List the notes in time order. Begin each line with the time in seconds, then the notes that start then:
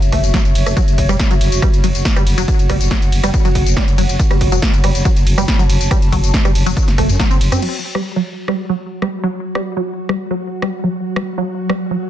Already playing: F#4 C#5 E5
0.02 F#1, closed hi-hat, tambourine
0.12 F#1 A3, kick, cross-stick, open hi-hat, ride
0.24 F#1, closed hi-hat, tambourine
0.34 F#3, kick, snare, closed hi-hat, tambourine
0.45 F#1, closed hi-hat, tambourine
0.55 F#1, open hi-hat, ride
0.66 F#1 A3, cross-stick, closed hi-hat, tambourine
0.77 F#3, kick, closed hi-hat, tambourine
0.88 F#1, closed hi-hat, tambourine
0.98 F#1, kick, open hi-hat, ride
1.09 E1 G3, cross-stick, closed hi-hat, tambourine
1.20 kick, snare, closed hi-hat, tambourine
1.31 F#1 F#3, closed hi-hat, tambourine
1.37 F#5
1.41 F#1, open hi-hat, ride
1.52 F#1, closed hi-hat, tambourine
1.62 G3, kick, cross-stick, closed hi-hat, tambourine
1.74 F#1, closed hi-hat, tambourine
1.84 F#1 F#3, open hi-hat, ride
1.95 F#1, closed hi-hat, tambourine
2.05 kick, snare, closed hi-hat, tambourine
2.16 F#1 G3, cross-stick, closed hi-hat, tambourine
2.27 F#1, open hi-hat, ride
2.38 F#1 F#3, closed hi-hat, tambourine
2.48 kick, closed hi-hat, tambourine
2.59 F#1, closed hi-hat, tambourine
2.69 F#1 G3, kick, cross-stick, open hi-hat, ride
2.81 F#1, closed hi-hat, tambourine
2.91 F#3, kick, snare, closed hi-hat
3.02 F#1, closed hi-hat, tambourine
3.12 F#1, open hi-hat, ride
3.23 F#1 G3, cross-stick, open hi-hat, tambourine
3.34 kick, closed hi-hat, tambourine
3.45 F#1 F#3, closed hi-hat, tambourine
3.55 F#1, kick, open hi-hat, ride
3.66 F#1, closed hi-hat, tambourine
3.77 G3, kick, cross-stick, snare, closed hi-hat
3.88 F#1, closed hi-hat, tambourine
3.98 F#1 F#3, open hi-hat, ride
4.09 F#1, closed hi-hat, tambourine
4.19 kick, closed hi-hat, tambourine
4.31 F#1 G3, cross-stick, closed hi-hat, tambourine
4.41 F#1, kick, open hi-hat, ride
4.52 E1 F#3, closed hi-hat, tambourine
4.62 kick, snare, closed hi-hat, tambourine
4.74 F#1, closed hi-hat, tambourine
4.80 A5
4.84 F#1 G3, cross-stick, open hi-hat, ride
4.95 F#1, closed hi-hat, tambourine
5.05 F#3, kick, closed hi-hat, tambourine
5.16 F#1, closed hi-hat, tambourine
5.27 F#1, open hi-hat, ride
5.38 F#1 G3, cross-stick, closed hi-hat, tambourine
5.48 kick, snare, closed hi-hat, tambourine
5.59 F#1 F#3, closed hi-hat, tambourine
5.69 F#1, open hi-hat, ride
5.81 F#1, closed hi-hat, tambourine
5.91 G3, kick, cross-stick, closed hi-hat, tambourine
6.02 F#1, closed hi-hat, tambourine
6.12 F#1 F#3, kick, open hi-hat, ride
6.24 F#1, closed hi-hat, tambourine
6.34 kick, snare, closed hi-hat, tambourine
6.45 F#1 G3, cross-stick, closed hi-hat, tambourine
6.55 F#1, open hi-hat, ride
6.66 F#1 F#3, open hi-hat, tambourine
6.77 kick, closed hi-hat, tambourine
6.88 F#1, snare, closed hi-hat, tambourine
6.98 F#1 A3, kick, cross-stick, open hi-hat, ride
7.09 F#2, closed hi-hat, tambourine
7.19 F#3, kick, snare, closed hi-hat
7.31 F#1 C4, closed hi-hat, tambourine
7.41 F#1, open hi-hat, ride
7.52 F#2 C4, cross-stick, closed hi-hat, tambourine
7.62 F#3 F#4, crash
7.95 G3, cross-stick
8.00 C#5
8.16 F#3
8.33 F#5
8.48 G3, cross-stick
8.69 F#3
9.02 G3, cross-stick
9.24 F#3
9.55 G3, cross-stick
9.77 F#3
10.09 G3, cross-stick
10.31 F#3
10.62 G3, cross-stick
10.84 F#3
11.16 G3, cross-stick
11.38 F#3
11.70 G3, cross-stick
11.91 F#3